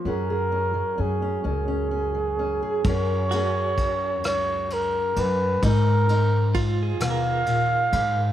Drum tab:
RD |------|xxxxxx|xxxxxx|
SD |------|---r--|---r--|
BD |------|o-o---|o-o---|